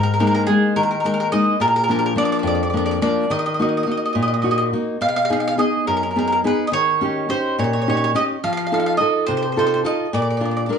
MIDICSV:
0, 0, Header, 1, 3, 480
1, 0, Start_track
1, 0, Key_signature, -6, "minor"
1, 0, Tempo, 567108
1, 1358, Time_signature, 6, 3, 24, 8
1, 9128, End_track
2, 0, Start_track
2, 0, Title_t, "Mandolin"
2, 0, Program_c, 0, 25
2, 27, Note_on_c, 0, 70, 68
2, 95, Note_off_c, 0, 70, 0
2, 116, Note_on_c, 0, 70, 58
2, 161, Note_off_c, 0, 70, 0
2, 172, Note_on_c, 0, 70, 62
2, 219, Note_off_c, 0, 70, 0
2, 230, Note_on_c, 0, 70, 60
2, 283, Note_off_c, 0, 70, 0
2, 293, Note_on_c, 0, 70, 73
2, 352, Note_off_c, 0, 70, 0
2, 394, Note_on_c, 0, 68, 75
2, 620, Note_off_c, 0, 68, 0
2, 645, Note_on_c, 0, 70, 76
2, 694, Note_off_c, 0, 70, 0
2, 704, Note_on_c, 0, 70, 58
2, 758, Note_off_c, 0, 70, 0
2, 768, Note_on_c, 0, 70, 47
2, 827, Note_off_c, 0, 70, 0
2, 848, Note_on_c, 0, 70, 53
2, 885, Note_off_c, 0, 70, 0
2, 895, Note_on_c, 0, 70, 72
2, 952, Note_off_c, 0, 70, 0
2, 963, Note_on_c, 0, 70, 52
2, 1006, Note_off_c, 0, 70, 0
2, 1016, Note_on_c, 0, 70, 58
2, 1073, Note_off_c, 0, 70, 0
2, 1117, Note_on_c, 0, 75, 84
2, 1339, Note_off_c, 0, 75, 0
2, 1366, Note_on_c, 0, 70, 87
2, 1410, Note_off_c, 0, 70, 0
2, 1420, Note_on_c, 0, 70, 59
2, 1480, Note_off_c, 0, 70, 0
2, 1490, Note_on_c, 0, 70, 67
2, 1544, Note_off_c, 0, 70, 0
2, 1554, Note_on_c, 0, 70, 60
2, 1605, Note_off_c, 0, 70, 0
2, 1615, Note_on_c, 0, 70, 62
2, 1674, Note_off_c, 0, 70, 0
2, 1683, Note_on_c, 0, 70, 57
2, 1732, Note_off_c, 0, 70, 0
2, 1742, Note_on_c, 0, 70, 63
2, 1799, Note_off_c, 0, 70, 0
2, 1846, Note_on_c, 0, 74, 88
2, 1895, Note_off_c, 0, 74, 0
2, 1906, Note_on_c, 0, 74, 62
2, 1955, Note_off_c, 0, 74, 0
2, 1965, Note_on_c, 0, 74, 61
2, 2014, Note_off_c, 0, 74, 0
2, 2024, Note_on_c, 0, 74, 46
2, 2080, Note_off_c, 0, 74, 0
2, 2094, Note_on_c, 0, 74, 65
2, 2147, Note_off_c, 0, 74, 0
2, 2156, Note_on_c, 0, 74, 47
2, 2210, Note_off_c, 0, 74, 0
2, 2226, Note_on_c, 0, 74, 47
2, 2274, Note_off_c, 0, 74, 0
2, 2284, Note_on_c, 0, 74, 42
2, 2335, Note_off_c, 0, 74, 0
2, 2345, Note_on_c, 0, 74, 58
2, 2397, Note_off_c, 0, 74, 0
2, 2418, Note_on_c, 0, 74, 62
2, 2454, Note_off_c, 0, 74, 0
2, 2464, Note_on_c, 0, 74, 61
2, 2518, Note_off_c, 0, 74, 0
2, 2558, Note_on_c, 0, 74, 81
2, 2799, Note_off_c, 0, 74, 0
2, 2802, Note_on_c, 0, 75, 79
2, 2857, Note_off_c, 0, 75, 0
2, 2869, Note_on_c, 0, 75, 60
2, 2918, Note_off_c, 0, 75, 0
2, 2928, Note_on_c, 0, 75, 57
2, 2983, Note_off_c, 0, 75, 0
2, 2999, Note_on_c, 0, 75, 46
2, 3050, Note_off_c, 0, 75, 0
2, 3064, Note_on_c, 0, 75, 49
2, 3110, Note_off_c, 0, 75, 0
2, 3120, Note_on_c, 0, 75, 37
2, 3172, Note_off_c, 0, 75, 0
2, 3193, Note_on_c, 0, 75, 49
2, 3232, Note_off_c, 0, 75, 0
2, 3242, Note_on_c, 0, 75, 47
2, 3295, Note_off_c, 0, 75, 0
2, 3313, Note_on_c, 0, 75, 51
2, 3353, Note_off_c, 0, 75, 0
2, 3363, Note_on_c, 0, 75, 44
2, 3417, Note_off_c, 0, 75, 0
2, 3432, Note_on_c, 0, 75, 47
2, 3483, Note_off_c, 0, 75, 0
2, 3494, Note_on_c, 0, 75, 39
2, 3545, Note_off_c, 0, 75, 0
2, 3576, Note_on_c, 0, 75, 55
2, 3610, Note_off_c, 0, 75, 0
2, 3620, Note_on_c, 0, 75, 45
2, 3661, Note_off_c, 0, 75, 0
2, 3671, Note_on_c, 0, 75, 45
2, 3729, Note_off_c, 0, 75, 0
2, 3740, Note_on_c, 0, 75, 44
2, 3794, Note_off_c, 0, 75, 0
2, 3817, Note_on_c, 0, 75, 59
2, 3864, Note_off_c, 0, 75, 0
2, 3874, Note_on_c, 0, 75, 59
2, 3924, Note_off_c, 0, 75, 0
2, 4246, Note_on_c, 0, 77, 85
2, 4294, Note_off_c, 0, 77, 0
2, 4304, Note_on_c, 0, 77, 68
2, 4359, Note_off_c, 0, 77, 0
2, 4370, Note_on_c, 0, 77, 82
2, 4430, Note_off_c, 0, 77, 0
2, 4443, Note_on_c, 0, 77, 72
2, 4498, Note_off_c, 0, 77, 0
2, 4508, Note_on_c, 0, 77, 67
2, 4561, Note_off_c, 0, 77, 0
2, 4572, Note_on_c, 0, 77, 54
2, 4624, Note_off_c, 0, 77, 0
2, 4634, Note_on_c, 0, 77, 77
2, 4687, Note_off_c, 0, 77, 0
2, 4731, Note_on_c, 0, 75, 76
2, 4954, Note_off_c, 0, 75, 0
2, 4971, Note_on_c, 0, 70, 66
2, 5029, Note_off_c, 0, 70, 0
2, 5051, Note_on_c, 0, 70, 52
2, 5094, Note_off_c, 0, 70, 0
2, 5104, Note_on_c, 0, 70, 49
2, 5160, Note_off_c, 0, 70, 0
2, 5170, Note_on_c, 0, 70, 39
2, 5224, Note_off_c, 0, 70, 0
2, 5236, Note_on_c, 0, 70, 63
2, 5288, Note_off_c, 0, 70, 0
2, 5311, Note_on_c, 0, 70, 61
2, 5343, Note_off_c, 0, 70, 0
2, 5353, Note_on_c, 0, 70, 62
2, 5408, Note_off_c, 0, 70, 0
2, 5475, Note_on_c, 0, 71, 75
2, 5634, Note_off_c, 0, 71, 0
2, 5648, Note_on_c, 0, 75, 62
2, 5696, Note_off_c, 0, 75, 0
2, 5700, Note_on_c, 0, 73, 88
2, 6173, Note_off_c, 0, 73, 0
2, 6177, Note_on_c, 0, 72, 82
2, 6397, Note_off_c, 0, 72, 0
2, 6427, Note_on_c, 0, 73, 67
2, 6456, Note_off_c, 0, 73, 0
2, 6466, Note_on_c, 0, 73, 49
2, 6529, Note_off_c, 0, 73, 0
2, 6545, Note_on_c, 0, 73, 51
2, 6600, Note_off_c, 0, 73, 0
2, 6616, Note_on_c, 0, 73, 47
2, 6667, Note_off_c, 0, 73, 0
2, 6683, Note_on_c, 0, 73, 68
2, 6731, Note_off_c, 0, 73, 0
2, 6745, Note_on_c, 0, 73, 52
2, 6792, Note_off_c, 0, 73, 0
2, 6805, Note_on_c, 0, 73, 66
2, 6853, Note_off_c, 0, 73, 0
2, 6904, Note_on_c, 0, 75, 82
2, 6966, Note_off_c, 0, 75, 0
2, 7141, Note_on_c, 0, 77, 82
2, 7193, Note_off_c, 0, 77, 0
2, 7218, Note_on_c, 0, 77, 66
2, 7246, Note_off_c, 0, 77, 0
2, 7256, Note_on_c, 0, 77, 74
2, 7313, Note_off_c, 0, 77, 0
2, 7334, Note_on_c, 0, 77, 53
2, 7384, Note_off_c, 0, 77, 0
2, 7396, Note_on_c, 0, 77, 65
2, 7436, Note_off_c, 0, 77, 0
2, 7446, Note_on_c, 0, 77, 58
2, 7491, Note_off_c, 0, 77, 0
2, 7502, Note_on_c, 0, 77, 69
2, 7558, Note_off_c, 0, 77, 0
2, 7594, Note_on_c, 0, 75, 70
2, 7820, Note_off_c, 0, 75, 0
2, 7842, Note_on_c, 0, 72, 77
2, 7901, Note_off_c, 0, 72, 0
2, 7931, Note_on_c, 0, 72, 56
2, 7968, Note_off_c, 0, 72, 0
2, 7978, Note_on_c, 0, 72, 50
2, 8032, Note_off_c, 0, 72, 0
2, 8059, Note_on_c, 0, 72, 43
2, 8104, Note_off_c, 0, 72, 0
2, 8115, Note_on_c, 0, 72, 69
2, 8162, Note_off_c, 0, 72, 0
2, 8181, Note_on_c, 0, 72, 58
2, 8226, Note_off_c, 0, 72, 0
2, 8243, Note_on_c, 0, 72, 56
2, 8288, Note_off_c, 0, 72, 0
2, 8347, Note_on_c, 0, 75, 77
2, 8579, Note_off_c, 0, 75, 0
2, 8586, Note_on_c, 0, 74, 71
2, 8632, Note_off_c, 0, 74, 0
2, 8649, Note_on_c, 0, 74, 49
2, 8695, Note_off_c, 0, 74, 0
2, 8722, Note_on_c, 0, 74, 46
2, 8764, Note_off_c, 0, 74, 0
2, 8777, Note_on_c, 0, 74, 48
2, 8822, Note_off_c, 0, 74, 0
2, 8848, Note_on_c, 0, 74, 43
2, 8888, Note_off_c, 0, 74, 0
2, 8898, Note_on_c, 0, 74, 37
2, 8933, Note_off_c, 0, 74, 0
2, 8943, Note_on_c, 0, 74, 48
2, 8996, Note_off_c, 0, 74, 0
2, 9024, Note_on_c, 0, 74, 38
2, 9068, Note_off_c, 0, 74, 0
2, 9078, Note_on_c, 0, 74, 49
2, 9112, Note_off_c, 0, 74, 0
2, 9128, End_track
3, 0, Start_track
3, 0, Title_t, "Nylon-string guitar"
3, 0, Program_c, 1, 24
3, 0, Note_on_c, 1, 44, 60
3, 165, Note_on_c, 1, 56, 43
3, 168, Note_on_c, 1, 58, 41
3, 173, Note_on_c, 1, 63, 49
3, 393, Note_off_c, 1, 44, 0
3, 402, Note_off_c, 1, 56, 0
3, 407, Note_off_c, 1, 58, 0
3, 412, Note_off_c, 1, 63, 0
3, 412, Note_on_c, 1, 56, 40
3, 417, Note_on_c, 1, 58, 39
3, 422, Note_on_c, 1, 63, 38
3, 643, Note_on_c, 1, 51, 67
3, 795, Note_off_c, 1, 56, 0
3, 797, Note_off_c, 1, 58, 0
3, 801, Note_off_c, 1, 63, 0
3, 882, Note_on_c, 1, 56, 44
3, 886, Note_on_c, 1, 58, 38
3, 889, Note_on_c, 1, 63, 49
3, 1109, Note_off_c, 1, 51, 0
3, 1109, Note_off_c, 1, 56, 0
3, 1112, Note_off_c, 1, 58, 0
3, 1115, Note_off_c, 1, 63, 0
3, 1119, Note_on_c, 1, 56, 47
3, 1123, Note_on_c, 1, 58, 44
3, 1125, Note_on_c, 1, 63, 54
3, 1309, Note_off_c, 1, 56, 0
3, 1311, Note_off_c, 1, 58, 0
3, 1313, Note_off_c, 1, 63, 0
3, 1354, Note_on_c, 1, 46, 59
3, 1597, Note_on_c, 1, 53, 47
3, 1602, Note_on_c, 1, 58, 42
3, 1607, Note_on_c, 1, 62, 49
3, 1815, Note_off_c, 1, 58, 0
3, 1816, Note_off_c, 1, 53, 0
3, 1820, Note_off_c, 1, 46, 0
3, 1825, Note_on_c, 1, 53, 45
3, 1826, Note_off_c, 1, 62, 0
3, 1827, Note_on_c, 1, 58, 41
3, 1836, Note_on_c, 1, 62, 41
3, 2058, Note_on_c, 1, 41, 73
3, 2215, Note_off_c, 1, 53, 0
3, 2215, Note_off_c, 1, 58, 0
3, 2221, Note_off_c, 1, 62, 0
3, 2315, Note_on_c, 1, 53, 43
3, 2317, Note_on_c, 1, 58, 45
3, 2317, Note_on_c, 1, 62, 48
3, 2533, Note_off_c, 1, 41, 0
3, 2542, Note_off_c, 1, 53, 0
3, 2546, Note_off_c, 1, 62, 0
3, 2548, Note_off_c, 1, 58, 0
3, 2552, Note_on_c, 1, 53, 47
3, 2557, Note_on_c, 1, 58, 46
3, 2558, Note_on_c, 1, 62, 57
3, 2744, Note_off_c, 1, 53, 0
3, 2746, Note_off_c, 1, 62, 0
3, 2748, Note_off_c, 1, 58, 0
3, 2794, Note_on_c, 1, 51, 62
3, 3041, Note_on_c, 1, 58, 47
3, 3045, Note_on_c, 1, 63, 46
3, 3051, Note_on_c, 1, 66, 52
3, 3262, Note_off_c, 1, 51, 0
3, 3263, Note_off_c, 1, 58, 0
3, 3264, Note_off_c, 1, 63, 0
3, 3268, Note_off_c, 1, 66, 0
3, 3272, Note_on_c, 1, 58, 39
3, 3275, Note_on_c, 1, 63, 36
3, 3278, Note_on_c, 1, 66, 38
3, 3512, Note_on_c, 1, 46, 68
3, 3662, Note_off_c, 1, 58, 0
3, 3663, Note_off_c, 1, 63, 0
3, 3665, Note_off_c, 1, 66, 0
3, 3749, Note_on_c, 1, 58, 37
3, 3754, Note_on_c, 1, 63, 33
3, 3760, Note_on_c, 1, 66, 45
3, 3985, Note_off_c, 1, 46, 0
3, 3995, Note_off_c, 1, 66, 0
3, 3996, Note_off_c, 1, 58, 0
3, 3997, Note_off_c, 1, 63, 0
3, 4005, Note_on_c, 1, 58, 47
3, 4007, Note_on_c, 1, 63, 46
3, 4007, Note_on_c, 1, 66, 45
3, 4197, Note_off_c, 1, 58, 0
3, 4197, Note_off_c, 1, 66, 0
3, 4198, Note_off_c, 1, 63, 0
3, 4239, Note_on_c, 1, 47, 62
3, 4484, Note_on_c, 1, 59, 48
3, 4486, Note_on_c, 1, 68, 53
3, 4487, Note_on_c, 1, 63, 41
3, 4709, Note_off_c, 1, 59, 0
3, 4712, Note_off_c, 1, 63, 0
3, 4714, Note_off_c, 1, 47, 0
3, 4714, Note_off_c, 1, 68, 0
3, 4719, Note_on_c, 1, 59, 40
3, 4721, Note_on_c, 1, 63, 39
3, 4725, Note_on_c, 1, 68, 41
3, 4969, Note_on_c, 1, 42, 60
3, 5111, Note_off_c, 1, 59, 0
3, 5113, Note_off_c, 1, 63, 0
3, 5114, Note_off_c, 1, 68, 0
3, 5211, Note_on_c, 1, 59, 45
3, 5216, Note_on_c, 1, 63, 40
3, 5219, Note_on_c, 1, 68, 41
3, 5439, Note_off_c, 1, 42, 0
3, 5443, Note_off_c, 1, 59, 0
3, 5443, Note_off_c, 1, 63, 0
3, 5451, Note_off_c, 1, 68, 0
3, 5452, Note_on_c, 1, 59, 49
3, 5455, Note_on_c, 1, 63, 47
3, 5461, Note_on_c, 1, 68, 53
3, 5644, Note_off_c, 1, 59, 0
3, 5645, Note_off_c, 1, 63, 0
3, 5649, Note_off_c, 1, 68, 0
3, 5685, Note_on_c, 1, 51, 59
3, 5934, Note_on_c, 1, 61, 46
3, 5935, Note_on_c, 1, 63, 46
3, 5945, Note_on_c, 1, 67, 51
3, 6157, Note_off_c, 1, 51, 0
3, 6158, Note_off_c, 1, 61, 0
3, 6166, Note_off_c, 1, 63, 0
3, 6168, Note_on_c, 1, 61, 45
3, 6169, Note_off_c, 1, 67, 0
3, 6177, Note_on_c, 1, 63, 39
3, 6182, Note_on_c, 1, 67, 46
3, 6420, Note_on_c, 1, 46, 66
3, 6555, Note_off_c, 1, 61, 0
3, 6560, Note_off_c, 1, 63, 0
3, 6562, Note_off_c, 1, 67, 0
3, 6663, Note_on_c, 1, 61, 42
3, 6669, Note_on_c, 1, 63, 37
3, 6670, Note_on_c, 1, 67, 43
3, 6881, Note_off_c, 1, 46, 0
3, 6884, Note_off_c, 1, 61, 0
3, 6887, Note_off_c, 1, 63, 0
3, 6890, Note_off_c, 1, 67, 0
3, 6893, Note_on_c, 1, 61, 50
3, 6899, Note_on_c, 1, 63, 48
3, 6900, Note_on_c, 1, 67, 50
3, 7082, Note_off_c, 1, 61, 0
3, 7084, Note_off_c, 1, 63, 0
3, 7086, Note_off_c, 1, 67, 0
3, 7141, Note_on_c, 1, 53, 60
3, 7380, Note_on_c, 1, 63, 46
3, 7383, Note_on_c, 1, 69, 47
3, 7386, Note_on_c, 1, 65, 46
3, 7599, Note_off_c, 1, 53, 0
3, 7611, Note_off_c, 1, 65, 0
3, 7612, Note_off_c, 1, 63, 0
3, 7614, Note_off_c, 1, 69, 0
3, 7621, Note_on_c, 1, 63, 44
3, 7622, Note_on_c, 1, 65, 37
3, 7627, Note_on_c, 1, 69, 47
3, 7855, Note_on_c, 1, 48, 69
3, 7999, Note_off_c, 1, 63, 0
3, 7999, Note_off_c, 1, 65, 0
3, 8001, Note_off_c, 1, 69, 0
3, 8095, Note_on_c, 1, 63, 44
3, 8101, Note_on_c, 1, 65, 37
3, 8102, Note_on_c, 1, 69, 47
3, 8315, Note_off_c, 1, 48, 0
3, 8321, Note_off_c, 1, 69, 0
3, 8323, Note_off_c, 1, 65, 0
3, 8324, Note_off_c, 1, 63, 0
3, 8332, Note_on_c, 1, 63, 48
3, 8334, Note_on_c, 1, 65, 49
3, 8337, Note_on_c, 1, 69, 54
3, 8518, Note_off_c, 1, 69, 0
3, 8519, Note_off_c, 1, 63, 0
3, 8519, Note_off_c, 1, 65, 0
3, 8575, Note_on_c, 1, 46, 67
3, 8806, Note_on_c, 1, 62, 43
3, 8808, Note_on_c, 1, 65, 43
3, 8812, Note_on_c, 1, 70, 47
3, 9035, Note_off_c, 1, 46, 0
3, 9039, Note_off_c, 1, 62, 0
3, 9041, Note_off_c, 1, 65, 0
3, 9047, Note_off_c, 1, 70, 0
3, 9049, Note_on_c, 1, 62, 44
3, 9053, Note_on_c, 1, 65, 36
3, 9057, Note_on_c, 1, 70, 49
3, 9128, Note_off_c, 1, 62, 0
3, 9128, Note_off_c, 1, 65, 0
3, 9128, Note_off_c, 1, 70, 0
3, 9128, End_track
0, 0, End_of_file